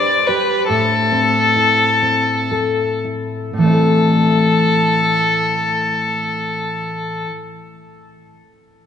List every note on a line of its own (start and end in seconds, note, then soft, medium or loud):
0.00 0.68 G3 medium
0.00 0.78 D4 soft
0.00 0.28 G4 soft
0.00 0.77 B4 medium
0.00 0.28 D5 medium
0.27 0.77 G4 soft
0.27 0.67 B4 medium
0.67 3.52 A2 medium
0.67 2.99 A4 medium
1.12 2.02 C4 soft
1.56 3.04 E4 soft
2.02 3.66 C4 soft
2.51 3.73 A4 soft
3.04 3.69 E4 soft
3.53 7.25 A2 soft
3.58 7.29 E3 soft
3.58 7.27 A4 medium
3.62 7.34 A3 soft
3.62 7.37 C4 soft
3.70 7.41 E4 soft
3.70 7.45 A4 soft